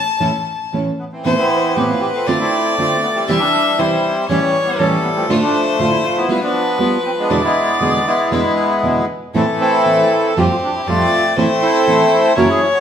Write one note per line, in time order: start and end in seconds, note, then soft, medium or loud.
0.00 0.72 A5 loud
0.20 0.29 A2 medium
0.20 0.29 E3 medium
0.20 0.29 A3 medium
0.20 0.42 C#4 medium
0.20 0.30 C#4 medium
0.20 0.42 E4 medium
0.20 0.30 E4 medium
0.20 0.42 A4 medium
0.72 0.90 A2 medium
0.72 0.90 E3 medium
0.72 0.90 A3 medium
0.72 0.94 C#4 soft
0.72 0.91 C#4 medium
0.72 0.94 E4 soft
0.72 0.91 E4 medium
0.72 0.94 A4 soft
0.99 1.05 B3 medium
1.12 2.11 E3 medium
1.12 1.36 C4 medium
1.24 1.34 A2 medium
1.24 1.34 E3 medium
1.24 1.46 B3 medium
1.24 1.34 B3 medium
1.24 1.46 C4 medium
1.24 1.34 C4 medium
1.24 1.34 E4 loud
1.24 1.46 A4 medium
1.24 1.77 C5 loud
1.37 2.23 B3 medium
1.37 2.14 C4 medium
1.37 1.73 E4 medium
1.76 1.93 A2 medium
1.76 1.93 E3 medium
1.76 1.98 B3 medium
1.76 1.94 B3 medium
1.76 1.98 C4 soft
1.76 1.93 C4 medium
1.76 1.94 E4 medium
1.76 1.89 G4 medium
1.76 1.98 A4 medium
1.76 2.28 B4 medium
1.89 2.01 F4 medium
2.01 2.07 G4 medium
2.15 2.39 A3 medium
2.15 2.39 C4 medium
2.15 2.26 F4 medium
2.27 2.36 D3 medium
2.27 2.36 A3 medium
2.27 2.48 C4 medium
2.27 2.37 C4 loud
2.27 2.48 D4 medium
2.27 2.48 F4 medium
2.27 2.37 F4 medium
2.27 3.30 D5 loud
2.40 3.25 A3 medium
2.40 2.76 C4 medium
2.40 2.75 E4 loud
2.77 2.95 D3 medium
2.77 2.95 A3 medium
2.77 3.01 C4 medium
2.77 2.99 C4 medium
2.77 2.95 C4 medium
2.77 2.99 D4 medium
2.77 2.99 F4 medium
2.77 2.96 F4 medium
3.03 3.09 B3 medium
3.15 4.12 E3 medium
3.15 3.38 G3 medium
3.15 3.26 C4 medium
3.28 3.37 C3 medium
3.28 3.37 E3 loud
3.28 3.38 G3 medium
3.28 3.49 C4 medium
3.28 3.38 C4 loud
3.28 3.49 E4 medium
3.28 3.38 E4 loud
3.28 3.49 G4 medium
3.28 3.80 E5 loud
3.39 3.77 G3 medium
3.39 3.79 D4 loud
3.78 3.95 C3 medium
3.78 3.96 E3 medium
3.78 4.25 G3 medium
3.78 3.96 G3 medium
3.78 4.25 C4 medium
3.78 4.00 C4 medium
3.78 3.96 C4 medium
3.78 4.25 E4 loud
3.78 4.00 E4 medium
3.78 3.96 E4 medium
3.78 4.00 G4 medium
3.78 4.28 C5 loud
4.29 4.38 A2 medium
4.29 4.38 E3 loud
4.29 5.25 E3 medium
4.29 5.25 G3 medium
4.29 4.38 G3 medium
4.29 4.50 A3 medium
4.29 4.64 C#4 loud
4.29 4.50 C#4 medium
4.29 4.39 C#4 loud
4.29 4.39 E4 loud
4.29 4.50 G4 medium
4.29 4.81 C#5 loud
4.66 4.72 B3 medium
4.78 4.96 A2 medium
4.78 4.96 E3 medium
4.78 4.96 G3 medium
4.78 5.01 A3 medium
4.78 5.04 C#4 loud
4.78 5.01 C#4 medium
4.78 4.96 C#4 medium
4.78 4.97 E4 medium
4.78 5.01 G4 medium
4.78 5.31 A4 loud
5.04 5.09 B3 medium
5.16 5.40 F3 medium
5.16 5.40 A3 medium
5.16 5.28 C4 medium
5.29 5.38 A2 medium
5.29 5.38 D3 loud
5.29 5.50 A3 medium
5.29 5.38 A3 loud
5.29 5.50 D4 medium
5.29 5.38 D4 loud
5.29 5.50 F4 loud
5.29 5.38 F4 loud
5.29 6.31 C5 loud
5.41 6.25 F3 medium
5.41 6.25 A3 medium
5.41 5.76 D4 loud
5.78 5.96 A2 medium
5.78 5.96 D3 medium
5.78 6.00 A3 medium
5.78 5.96 A3 medium
5.78 6.00 D4 medium
5.78 5.96 D4 medium
5.78 5.90 F4 loud
5.78 6.00 F4 medium
5.78 5.96 F4 medium
5.91 6.04 E4 medium
6.04 6.17 F4 medium
6.17 6.41 B3 medium
6.17 6.40 E4 loud
6.28 6.38 G3 medium
6.28 6.50 G3 medium
6.28 6.38 B3 loud
6.28 6.50 B3 medium
6.28 6.50 F4 medium
6.28 6.38 F4 loud
6.28 7.32 B4 loud
6.42 7.27 F3 medium
6.42 6.79 B3 medium
6.42 6.77 D4 loud
6.79 6.96 G3 medium
6.79 7.01 G3 medium
6.79 6.96 B3 medium
6.79 7.01 B3 medium
6.79 7.03 B3 loud
6.79 7.01 F4 medium
6.79 6.97 F4 medium
7.06 7.11 C4 loud
7.19 7.42 G#3 medium
7.19 7.42 B3 medium
7.19 7.42 D4 medium
7.29 7.39 E2 medium
7.29 7.39 B2 medium
7.29 7.39 D3 loud
7.29 7.51 G#3 medium
7.29 7.39 G#3 loud
7.29 7.39 B3 loud
7.29 7.51 D4 medium
7.29 7.51 E4 medium
7.29 7.39 E4 loud
7.29 8.31 D5 loud
7.44 8.06 G#3 medium
7.44 8.06 B3 medium
7.44 7.79 E4 loud
7.80 7.97 E2 medium
7.80 7.97 B2 medium
7.80 7.97 D3 medium
7.80 8.02 G#3 medium
7.80 7.98 G#3 medium
7.80 7.98 B3 medium
7.80 8.02 D4 soft
7.80 8.02 E4 medium
7.80 7.98 E4 medium
7.80 7.93 G#4 loud
8.07 9.05 G#3 medium
8.07 9.05 B3 medium
8.07 9.05 E4 loud
8.31 8.40 E2 medium
8.31 8.40 B2 medium
8.31 8.41 D3 medium
8.31 8.41 G#3 medium
8.31 8.53 G#3 medium
8.31 8.41 B3 medium
8.31 8.53 D4 medium
8.31 8.53 E4 medium
8.31 8.41 E4 loud
8.31 9.05 B4 medium
8.82 9.00 E2 medium
8.82 9.00 B2 medium
8.82 9.00 D3 medium
8.82 9.05 G#3 medium
8.82 9.00 G#3 medium
8.82 9.01 B3 medium
8.82 9.05 D4 soft
8.82 9.05 E4 medium
8.82 9.01 E4 medium
9.34 9.43 A2 loud
9.34 9.43 E3 medium
9.34 10.33 E3 medium
9.34 9.56 A3 medium
9.34 9.44 A3 medium
9.34 10.33 A3 medium
9.34 9.56 C4 medium
9.34 9.47 C4 medium
9.34 9.44 C4 medium
9.34 9.56 E4 medium
9.34 9.44 E4 loud
9.34 10.39 A4 loud
9.61 10.33 C4 medium
9.61 10.33 E4 medium
9.61 10.11 A4 loud
9.85 10.02 A2 medium
9.85 10.03 E3 medium
9.85 10.03 A3 medium
9.85 10.07 A3 medium
9.85 10.03 C4 medium
9.85 10.08 C4 medium
9.85 10.08 E4 medium
9.85 10.03 E4 medium
10.13 10.38 A4 loud
10.37 10.46 F2 medium
10.37 10.46 A2 medium
10.37 10.46 F3 medium
10.37 10.58 G3 medium
10.37 10.46 G3 medium
10.37 10.58 A3 medium
10.37 10.46 C4 medium
10.37 10.87 C4 medium
10.37 10.58 F4 medium
10.37 10.46 F4 loud
10.37 10.89 G4 medium
10.37 10.44 G4 loud
10.51 10.56 F4 medium
10.63 10.74 D4 medium
10.76 10.81 E4 medium
10.87 11.03 F2 medium
10.87 11.04 A2 medium
10.87 11.04 F3 medium
10.87 11.08 G3 medium
10.87 11.04 G3 medium
10.87 11.08 A3 soft
10.87 11.34 A3 medium
10.87 11.34 C4 medium
10.87 11.04 C4 medium
10.87 11.08 F4 medium
10.87 11.04 F4 medium
10.87 11.23 F4 loud
10.87 11.38 D5 loud
11.36 11.46 A2 medium
11.36 11.46 E3 medium
11.36 12.33 A3 medium
11.36 11.58 A3 medium
11.36 11.46 A3 medium
11.36 12.33 C4 medium
11.36 11.58 C4 medium
11.36 11.46 C4 loud
11.36 11.58 E4 medium
11.36 11.46 E4 loud
11.36 11.49 E4 loud
11.36 12.37 C5 loud
11.62 12.33 E4 medium
11.62 12.33 A4 medium
11.62 12.33 C5 loud
11.87 12.03 A2 medium
11.87 12.04 E3 medium
11.87 12.08 A3 medium
11.87 12.04 A3 medium
11.87 12.08 C4 medium
11.87 12.04 C4 medium
11.87 12.08 E4 medium
11.87 12.04 E4 medium
12.36 12.45 F#2 medium
12.36 12.45 C#3 medium
12.36 12.46 E3 loud
12.36 12.58 F#3 medium
12.36 12.58 A#3 medium
12.36 12.46 A#3 loud
12.36 12.80 C#4 medium
12.36 12.46 C#4 loud
12.36 12.61 E4 medium
12.36 12.58 E4 medium
12.36 12.46 F#4 loud
12.36 12.48 A#4 loud
12.36 12.80 C#5 loud
12.49 12.62 G#4 loud
12.62 12.68 E4 medium
12.74 12.80 F#4 loud